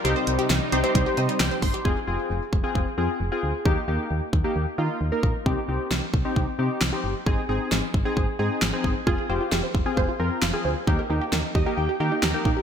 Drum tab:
HH |x-xxx-xxx-xxx-ox|----------------|----------------|----------------|
SD |----o-------o---|----------------|----------------|----o-------o---|
BD |--------o-----o-|o-----o-o-------|o-----o-------o-|o-----o-o-------|

HH |----------------|----------------|----------------|
SD |----o-------o---|----o-------o---|----o-------o---|
BD |o-----o-o-----o-|o-----o-o-------|o-----o-------o-|